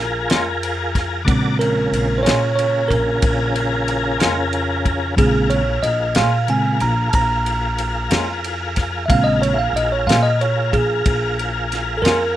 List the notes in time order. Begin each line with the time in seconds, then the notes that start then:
Already playing: A#1 F4 G#4 A#4
0.29 F2 A#2 G#3 C#4 F4, snare, ride
0.63 ride
0.95 kick, snare, ride
1.25 A#1 C#3 G#3 C4 F#4 A#4 D5 A5, kick, ride
1.59 C#3 F4 G#4 A#4, ride
1.92 A#1, ride
2.18 C5
2.23 A#2 G#3 C#4 F4 C#5, ride
2.27 snare
2.56 C#5, ride
2.88 A#1 A#4, kick, ride
3.22 A#1, kick, ride
3.56 ride
3.88 ride
4.19 F2 A#2 G#3 C#4 F4, snare, ride
4.53 ride
4.86 kick, ride
5.16 A#1 C#3 G#3 C4 F4 G#4 A#4 F5, kick, ride
5.50 C#5, ride
5.83 A#1 D#5, ride
6.15 A#2 G#3 C#4 F4 F5, snare, ride
6.48 C#3 G#3 C4 G#5, ride
6.80 A#1 A#5, ride
7.09 A#1 A5, ride
7.14 A#5, kick
7.46 ride
7.78 ride
8.10 F2 A#2 G#3 C#4 F4, snare, ride
8.44 ride
8.76 kick, snare, ride
9.06 C#3 G#3 F4 G#4 A#4 E5 F5, kick
9.10 A#1 C4, ride
9.24 D#5
9.42 C#5, ride
9.54 E5
9.59 F5
9.73 A#1 D#5, ride
9.92 C#5
10.07 A#2 G#3 C#4 F4 F5, snare, ride
10.23 D#5
10.41 C#5, ride
10.73 A#1 G#4, kick, ride
11.06 A#1, kick, ride
11.39 ride
11.72 snare, ride
11.97 A4
12.02 F2 A#2 G#3 C#4 F4 A#4, ride
12.06 snare